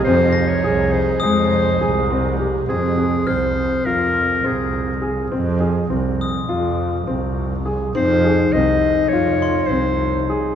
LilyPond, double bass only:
\new Staff \with { instrumentName = "Double bass" } { \clef bass \time 9/8 \key f \minor \tempo 4. = 68 f,8 r8 c,4 f,4 c,4. | f,4 c,4 f,4 c,4. | f,4 c,4 f,4 c,4. | f,4 c,4 f,4 c,4. | }